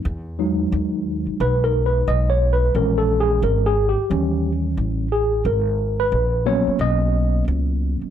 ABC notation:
X:1
M:4/4
L:1/16
Q:"Swing 16ths" 1/4=89
K:Elyd
V:1 name="Tine electric piano"
z8 (3B2 A2 B2 (3d2 c2 B2 | (3A2 =A2 G2 (3^A2 G2 =G2- G3 z3 ^G2 | A3 B3 c2 d4 z4 |]
V:2 name="Tine electric piano" clef=bass
z2 [F,G,D]12- [F,G,D]2 | [E,G,C]6 z2 [E,=G,C]6 z2 | z6 [F,A,B,C]8- [F,A,B,C]2 |]
V:3 name="Upright bass" clef=bass
E,,4 D,,3 z B,,,4 B,,,4 | A,,,4 G,,,3 z D,,4 =A,,,4 | G,,,4 A,,,3 z B,,,4 C,,3 z |]